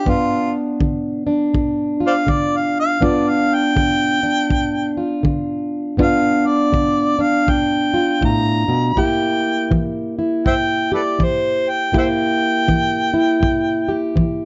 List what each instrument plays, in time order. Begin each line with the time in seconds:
Already playing: harmonica G4
0.06 steel-string acoustic guitar G2 B3 D4, harmonica F4, kick
0.81 steel-string acoustic guitar D3, kick
1.27 steel-string acoustic guitar D4
1.54 steel-string acoustic guitar D2, kick
2.00 steel-string acoustic guitar F4
2.07 harmonica C5 D5 F5
2.27 steel-string acoustic guitar D3, kick
2.31 harmonica D5
2.56 harmonica F5
2.80 harmonica F5
3.01 steel-string acoustic guitar G2 B3 D4 F4, kick
3.05 harmonica D5
3.29 harmonica F5
3.55 harmonica G5
3.76 steel-string acoustic guitar D3, kick
4.23 steel-string acoustic guitar D4
4.50 steel-string acoustic guitar D2, kick
4.97 steel-string acoustic guitar F4
5.23 steel-string acoustic guitar D3, kick
5.97 steel-string acoustic guitar G2 B3 D4 F4, kick
6.03 harmonica F5
6.47 harmonica D5
6.72 steel-string acoustic guitar D3, kick
7.19 steel-string acoustic guitar D4, harmonica F5
7.47 steel-string acoustic guitar D2, harmonica G5, kick
7.94 steel-string acoustic guitar F4
8.21 steel-string acoustic guitar A2, kick
8.25 harmonica A#5
8.68 steel-string acoustic guitar B2
8.96 steel-string acoustic guitar C3 A#3 E4 G4, kick
9.00 harmonica G5
9.71 steel-string acoustic guitar E3, kick
10.19 steel-string acoustic guitar E4
10.46 steel-string acoustic guitar G2, harmonica C5 E5 G5, kick
10.92 steel-string acoustic guitar G4, harmonica A4 B4 D5
11.19 steel-string acoustic guitar E3, kick
11.23 harmonica C5
11.70 harmonica G5
11.92 steel-string acoustic guitar C3 A#3 E4 G4, kick
11.98 harmonica C5 E5 G5
12.68 steel-string acoustic guitar E3, kick
13.14 steel-string acoustic guitar E4
13.40 steel-string acoustic guitar G2, kick
13.88 steel-string acoustic guitar G4
14.16 steel-string acoustic guitar E3, kick